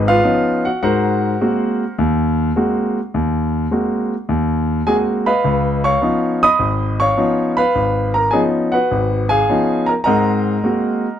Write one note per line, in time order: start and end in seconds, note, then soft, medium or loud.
0.00 0.17 G#1 medium
0.00 0.18 G#2 medium
0.08 0.62 F4 medium
0.08 0.62 B4 medium
0.08 0.67 F5 loud
0.23 0.66 F3 soft
0.23 0.66 B3 soft
0.23 0.67 C#4 medium
0.23 0.67 D#4 medium
0.65 0.82 F#4 medium
0.65 0.81 F#5 medium
0.83 1.33 G#2 medium
0.83 1.40 F#4 medium
0.83 1.95 A#4 medium
0.83 1.95 C5 medium
0.83 1.94 F#5 medium
1.41 1.82 G#3 soft
1.41 1.82 A#3 medium
1.41 1.83 C4 medium
1.41 1.83 F#4 medium
1.98 2.49 D#2 medium
2.56 2.98 G#3 medium
2.56 2.97 A#3 medium
2.56 2.98 C4 soft
2.56 2.98 F#4 medium
3.14 3.64 D#2 medium
3.71 4.13 G#3 medium
3.71 4.13 A#3 soft
3.71 4.13 C4 soft
3.71 4.13 F#4 medium
4.29 4.79 D#2 medium
4.87 5.28 G#3 soft
4.87 5.28 A#3 soft
4.87 5.28 C4 medium
4.87 5.29 F#4 medium
4.87 4.96 G#4 medium
4.87 4.96 G#5 medium
5.26 5.80 B4 medium
5.26 5.80 D#5 medium
5.26 5.80 F5 medium
5.26 5.86 B5 medium
5.44 5.95 C#2 medium
5.84 6.38 C#5 medium
5.84 6.38 F5 medium
5.84 6.38 C#6 medium
6.01 6.43 F3 medium
6.01 6.43 B3 medium
6.01 6.44 C#4 soft
6.01 6.44 D#4 medium
6.43 6.96 D#5 medium
6.43 6.96 B5 medium
6.43 7.02 D#6 loud
6.59 7.10 G#1 medium
7.00 7.54 C#5 medium
7.00 7.54 F5 medium
7.00 7.53 C#6 medium
7.17 7.59 F3 medium
7.17 7.59 B3 soft
7.17 7.59 C#4 soft
7.17 7.59 D#4 medium
7.57 8.11 B4 medium
7.57 8.11 F5 medium
7.57 8.10 B5 medium
7.75 8.25 G#1 medium
8.14 8.32 A#4 medium
8.14 8.31 A#5 medium
8.31 8.74 F3 medium
8.31 8.74 B3 medium
8.31 8.74 C#4 soft
8.31 8.75 D#4 medium
8.31 8.41 G#4 medium
8.31 8.40 G#5 medium
8.72 9.27 F#4 medium
8.72 9.27 B4 medium
8.72 9.26 F#5 medium
8.91 9.41 G#1 medium
9.29 9.84 G#4 medium
9.29 9.84 F5 medium
9.29 9.89 G#5 loud
9.49 9.90 F3 medium
9.49 9.90 B3 soft
9.49 9.90 C#4 soft
9.49 9.91 D#4 medium
9.86 9.94 A#4 medium
9.86 9.91 A#5 medium
10.04 10.57 G#2 medium
10.04 10.57 C4 medium
10.04 11.17 A#4 medium
10.04 11.17 D#5 medium
10.04 11.17 F#5 medium
10.04 11.16 A#5 medium
10.64 11.05 G#3 medium
10.64 11.05 A#3 soft
10.64 11.05 C4 medium
10.64 11.06 F#4 medium